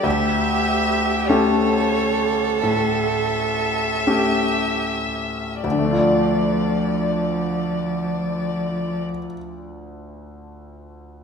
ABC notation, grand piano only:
X:1
M:4/4
L:1/8
Q:1/4=42
K:Dm
V:1 name="Grand piano"
D,,2 [A,^CG]2 A,,2 [A,CG]2 | [D,,D,A,DFd]8 |]